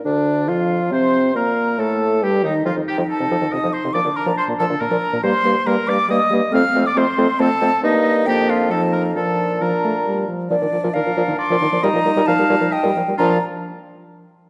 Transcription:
<<
  \new Staff \with { instrumentName = "Flute" } { \time 3/4 \key bes \major \tempo 4 = 138 d''4 f''4 c'''4 | bes''4 a''4 g''8 ees''8 | f''8 g''8 a''4 ees'''8 c'''8 | d'''8 bes''8 c'''8 a''8 bes''4 |
c'''4 bes''8 d'''8 ees'''4 | f'''8. d'''16 c'''4 a''4 | ees''4 g''8 f''8 a''8 bes''8 | a''4 bes''4. r8 |
d''4 f''4 c'''4 | bes''4 a''4 g''4 | bes''8 r2 r8 | }
  \new Staff \with { instrumentName = "Oboe" } { \time 3/4 \key bes \major d'4 f'4 c''4 | bes'4 a'4 g'8 ees'8 | f'8 g'8 a'4 ees''8 c''8 | d''8 bes'8 c''8 a'8 bes'4 |
c''4 bes'8 d''8 ees''4 | f''8. d''16 c''4 a'4 | ees'4 g'8 f'8 a'8 bes'8 | a'4 bes'4. r8 |
r4 bes'4 d''4 | ees''4 f''4 ees''8 r8 | f'8 r2 r8 | }
  \new Staff \with { instrumentName = "Clarinet" } { \time 3/4 \key bes \major d'4 f'4 c''4 | bes'4 a'4 g'8 ees'8 | ees'2. | d'2. |
bes8 bes8 bes8 bes8 bes8 bes8 | c'8 c'8 c'8 c'8 c'8 c'8 | ees'4 d'4 ees'4 | d'4 d'4. r8 |
d'2. | ees'2~ ees'8 r8 | d'8 r2 r8 | }
  \new Staff \with { instrumentName = "French horn" } { \clef bass \time 3/4 \key bes \major d4 f4 c'4 | bes4 a4 g8 ees8 | f16 ees16 r16 f16 r16 c16 f16 ees16 c16 f16 r16 c16 | f16 d16 r16 f16 r16 bes,16 f16 d16 bes,16 f16 r16 bes,16 |
g8 g8 g8 g8 g8 g8 | a8 a8 a8 a8 a8 a8 | bes4 bes4 f4 | f4 f8 a8 g8 f8 |
f16 ees16 f16 f16 ees16 f16 f16 ees16 r16 f16 ees16 f16 | g16 f16 g16 g16 f16 g16 g16 f16 r16 g16 f16 g16 | f8 r2 r8 | }
  \new Staff \with { instrumentName = "Bassoon" } { \clef bass \time 3/4 \key bes \major d,4 f,4 c4 | bes,4 a,4 g,8 ees,8 | f,16 f,16 r16 f,16 r16 f,16 f,16 f,16 f,16 f,16 r16 f,16 | bes,16 bes,16 r16 bes,16 r16 bes,16 bes,16 bes,16 bes,16 bes,16 r16 bes,16 |
g,8 g,8 g,8 g,8 g,8 g,8 | f,8 f,8 f,8 f,8 f,8 f,8 | g,4 f,2 | bes,2~ bes,8 r8 |
bes,16 bes,16 bes,16 bes,16 bes,16 bes,16 bes,16 bes,16 r16 bes,16 bes,16 bes,16 | bes,16 bes,16 bes,16 bes,16 bes,16 bes,16 bes,16 bes,16 r16 bes,16 bes,16 bes,16 | bes,8 r2 r8 | }
>>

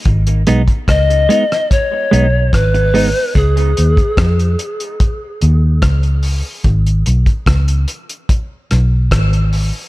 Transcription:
<<
  \new Staff \with { instrumentName = "Pan flute" } { \time 4/4 \key gis \dorian \tempo 4 = 73 r4 dis''4 cis''4 b'4 | gis'4. r2 r8 | r1 | }
  \new Staff \with { instrumentName = "Clean electric guitar" } { \time 4/4 \key gis \dorian r8 <gis b dis'>8 r8 <gis b dis'>8 r8 <gis b dis'>8 r8 <gis b dis'>8 | r1 | r1 | }
  \new Staff \with { instrumentName = "Fingered electric bass" } { \clef bass \time 4/4 \key gis \dorian gis,,8 b,,16 r16 cis,8 r4 b,,8 gis,,8. r16 | cis,8 dis,16 r16 eis,8 r4 dis,8 cis,8. r16 | gis,,8 b,,16 r16 cis,8 r4 b,,8 gis,,8. r16 | }
  \new DrumStaff \with { instrumentName = "Drums" } \drummode { \time 4/4 <hh bd>16 hh16 hh16 <hh bd>16 <hh bd ss>16 hh16 hh16 <hh ss>16 <hh bd>8 hh8 <hh bd ss>16 hh16 hho8 | <hh bd>16 hh16 hh16 <hh bd>16 <hh bd ss>16 hh16 hh16 hh16 <hh bd>8 hh8 <hh bd ss>16 hh16 hho8 | <hh bd>16 hh16 hh16 <hh bd>16 <hh bd ss>16 hh16 hh16 hh16 <hh bd>8 <hh ss>8 <hh bd ss>16 hh16 hho8 | }
>>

